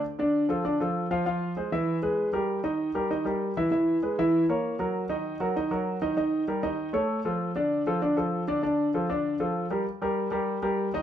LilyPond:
\new Staff \with { instrumentName = "Grand piano" } { \time 4/4 \key ees \lydian \tempo 4 = 196 r8 <d d' d''>4 <f f' a'>8 <d d' d''>8 <f f' a'>4 <f f' f''>8 | <f f' f''>4 <aes aes' c''>8 <e e' e''>4 <gis gis' b'>4 <g g' bes'>8~ | <g g' bes'>8 <ees ees' ees''>4 <g g' bes'>8 <ees ees' ees''>8 <g g' bes'>4 <e e' e''>8 | <e e' e''>4 <gis gis' b'>8 <e e' e''>4 <bes bes' des''>4 <ges ges' bes'>8~ |
<ges ges' bes'>8 <ees ees' ees''>4 <ges ges' bes'>8 <ees ees' ees''>8 <ges ges' bes'>4 <ees ees' ees''>8 | <ees ees' ees''>4 <g g' bes'>8 <ees ees' ees''>4 <a a' cis''>4 <f f' a'>8~ | <f f' a'>8 <d d' d''>4 <f f' a'>8 <d d' d''>8 <f f' a'>4 <d d' d''>8 | <d d' d''>4 <f f' a'>8 <d d' d''>4 <f f' a'>4 <g g' bes'>8 |
r8 <g g' bes'>4 <g g' bes'>4 <g g' bes'>4 <ees ees' ees''>8 | }